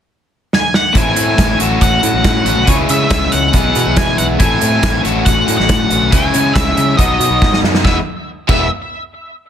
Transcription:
0.53 lead electric guitar G#5, snare
0.74 lead electric guitar F#5, snare
0.95 picked electric bass A1, overdriven electric guitar A2 E3 A3 C4 E4 A4, lead electric guitar G#5, kick, closed hi-hat
1.16 picked electric bass A2, closed hi-hat
1.38 picked electric bass A1, kick, snare, closed hi-hat
1.58 picked electric bass A1, overdriven electric guitar A2 F#3 A3 C#4 F#4 A4, closed hi-hat
1.81 picked electric bass A1, lead electric guitar F#5, kick, closed hi-hat
2.03 picked electric bass A2, closed hi-hat
2.14 picked electric bass A1
2.24 picked electric bass A2, kick, snare, closed hi-hat
2.45 picked electric bass A1, overdriven electric guitar A2 F#3 A3 C#4 F#4, closed hi-hat
2.57 picked electric bass B1
2.67 picked electric bass C#2, overdriven electric guitar C#3 E3 G#3 C#4 E4 G#4, lead electric guitar C#5, kick, closed hi-hat
2.89 picked electric bass C#3, lead electric guitar E5, closed hi-hat
3.10 picked electric bass C#2, lead electric guitar E5, kick, snare, closed hi-hat
3.32 picked electric bass C#2, lead electric guitar F#5, closed hi-hat
3.53 picked electric bass B1, overdriven electric guitar B2 E3 G#3 B3 E4 G#4, kick, closed hi-hat
3.75 picked electric bass B2, closed hi-hat
3.86 picked electric bass B1
3.97 picked electric bass B2, lead electric guitar G#5, kick, snare, closed hi-hat
4.18 picked electric bass B1, lead electric guitar F#5, closed hi-hat
4.29 picked electric bass B1
4.39 picked electric bass A1, overdriven electric guitar A2 E3 A3 C4 E4 A4, lead electric guitar G#5, kick, closed hi-hat
4.61 picked electric bass A2, closed hi-hat
4.83 picked electric bass A1, kick, snare, closed hi-hat
5.04 picked electric bass A1, overdriven electric guitar A2 F#3 A3 C#4 F#4 A4, closed hi-hat
5.25 picked electric bass A1, lead electric guitar F#5, kick, closed hi-hat
5.48 picked electric bass A2, closed hi-hat
5.58 picked electric bass A1, lead electric guitar F#5, snare
5.69 picked electric bass A2, kick, snare, closed hi-hat
5.89 picked electric bass A1, overdriven electric guitar A2 F#3 A3 C#4 F#4, closed hi-hat
6.02 picked electric bass B1
6.11 picked electric bass C#2, overdriven electric guitar C#3 E3 G#3 C#4 E4 G#4, lead electric guitar G#5, kick, closed hi-hat
6.34 picked electric bass C#3, closed hi-hat
6.53 picked electric bass C#2, lead electric guitar E5, kick, snare, closed hi-hat
6.77 picked electric bass C#3, closed hi-hat
6.97 picked electric bass B1, overdriven electric guitar B2 F#3 B3 D#4 F#4, lead electric guitar D#5, kick, closed hi-hat
7.20 picked electric bass B2, closed hi-hat
7.30 picked electric bass B1
7.42 picked electric bass G#2, kick, snare
7.53 snare
7.63 picked electric bass F#2, snare
7.75 snare
7.84 picked electric bass E1, overdriven electric guitar E2 B2 E3 G#3 B3 E4, lead electric guitar E5, kick, snare
8.48 picked electric bass E1, overdriven electric guitar E2 B2 E3 G#3 B3 E4, lead electric guitar E5, kick, crash

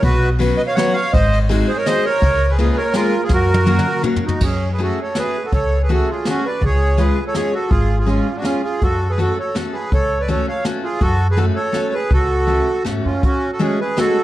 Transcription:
0.03 upright bass B1, accordion F#4 B4, kick, ride
0.39 steel-string acoustic guitar F#3 B3 C#4 F#4 B4, ride
0.57 accordion B4 D#5
0.67 accordion C#5 F5
0.75 steel-string acoustic guitar F#3 B3 C#4 F#4 B4, accordion C#5 F#5, snare, ride
0.93 accordion C#5 F5
1.13 upright bass G#1, accordion C5 D#5, kick, ride
1.33 ride
1.49 steel-string acoustic guitar G#3 C4 D#4 F#4 G#4, ride
1.68 accordion G#4 C5
1.77 accordion A#4 C#5
1.86 steel-string acoustic guitar G#3 C4 D#4 F#4 G#4, accordion C5 D#5, snare, ride
2.05 accordion A#4 C#5
2.22 upright bass C#2, kick, ride
2.50 accordion G#4 B4
2.58 steel-string acoustic guitar G#3 A#3 C#4 F4 G#4, accordion G#4 B4, ride
2.76 accordion A#4 C#5
2.94 steel-string acoustic guitar G#3 A#3 C#4 F4 G#4, accordion F4 A#4, snare, ride
3.24 accordion F4 G#4
3.29 upright bass F#2, accordion A#4, kick, snare
3.34 accordion F#4
3.54 high tom
3.66 steel-string acoustic guitar F#3 A#3 C#4 F#4 A#4, high tom
3.79 mid tom
4.02 steel-string acoustic guitar F#3 A#3 C#4 F#4 A#4, mid tom
4.16 floor tom
4.25 accordion D#4 F#4, floor tom
4.41 upright bass F#2, accordion C#4 G#4, kick, crash
4.73 accordion G#4 B4
4.78 steel-string acoustic guitar A3 C#4 F#4 G#4, accordion F#4, closed hi-hat
4.83 accordion A4
5.02 accordion A4 C#5
5.15 steel-string acoustic guitar A3 C#4 F#4 G#4, accordion G#4 B4, snare, closed hi-hat
5.45 accordion F#4 A4
5.52 upright bass C#2, accordion A4 C#5, kick, closed hi-hat
5.82 accordion G#4 B4
5.89 steel-string acoustic guitar A3 C#4 F#4 G#4, accordion F#4 A4, closed hi-hat
6.10 accordion F4 G#4
6.25 steel-string acoustic guitar A3 C#4 F#4 G#4, accordion C#4, snare, closed hi-hat
6.30 accordion F#4
6.46 accordion B4 D5
6.61 upright bass C#2, accordion G#4, kick, closed hi-hat
6.65 accordion C#5
6.97 steel-string acoustic guitar G#3 C#4 F4 G#4, accordion G#4 B4, closed hi-hat
7.27 accordion A4 C#5
7.34 steel-string acoustic guitar G#3 C#4 F4 G#4, accordion G#4 C#5, snare, closed hi-hat
7.54 accordion F#4 A4
7.70 upright bass G#1, accordion F4 G#4, kick, closed hi-hat
7.98 accordion F4 G#4
8.05 steel-string acoustic guitar G#3 C#4 F4 G#4, accordion C#4 F4, closed hi-hat
8.36 accordion D4 F#4
8.42 steel-string acoustic guitar G#3 C#4 F4 G#4, accordion C#4 F4, snare, closed hi-hat
8.63 accordion F4 G#4
8.81 upright bass F#2, accordion F#4 A4, kick, closed hi-hat
9.09 accordion G#4 B4
9.18 steel-string acoustic guitar A3 C#4 F#4 A4, accordion F#4 A4, closed hi-hat
9.39 accordion A4 C#5
9.55 steel-string acoustic guitar A3 C#4 F#4 A4, snare, closed hi-hat
9.72 accordion G#4 B4
9.92 upright bass C#2, accordion A4 C#5, kick, closed hi-hat
10.20 accordion B4 D5
10.28 steel-string acoustic guitar A3 C#4 F#4 A4, accordion A4 C#5, closed hi-hat
10.48 accordion C#5 F5
10.64 steel-string acoustic guitar A3 C#4 F#4 A4, snare, closed hi-hat
10.83 accordion F4 G#4
11.01 upright bass F#2, accordion F#4 A4, kick, closed hi-hat
11.31 accordion G#4 B4
11.37 steel-string acoustic guitar A3 C#4 F#4 A4, accordion F#4 A4, closed hi-hat
11.55 accordion A4 C#5
11.72 steel-string acoustic guitar A3 C#4 F#4 A4, snare, closed hi-hat
11.94 accordion G#4 B4
12.10 upright bass C#2, accordion F#4 A4, kick, closed hi-hat
12.47 steel-string acoustic guitar A3 C#4 F#4 A4, closed hi-hat
12.85 upright bass G#2, steel-string acoustic guitar A3 C#4 F#4 A4, snare, closed hi-hat
13.05 upright bass F#2, accordion C#4 F4
13.23 accordion C#4 F#4, kick, closed hi-hat
13.52 accordion F#4 A4
13.59 steel-string acoustic guitar G#3 A3 C#4 F#4 G#4, accordion C#4 G#4, closed hi-hat
13.81 accordion G#4 B4
13.97 steel-string acoustic guitar G#3 A3 C#4 F#4 G#4, accordion F#4 A4, snare, closed hi-hat

